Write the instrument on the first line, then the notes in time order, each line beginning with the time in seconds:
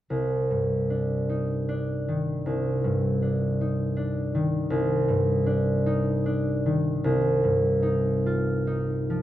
harp
0.10 C2
0.51 G2
0.90 D4
1.29 D#4
1.69 D4
2.08 D#3
2.46 C2
2.84 G2
3.22 D4
3.61 D#4
3.97 D4
4.35 D#3
4.70 C2
5.08 G2
5.46 D4
5.86 D#4
6.26 D4
6.66 D#3
7.04 C2
7.44 G2
7.83 D#4
8.26 F4
8.67 D#4
9.10 F3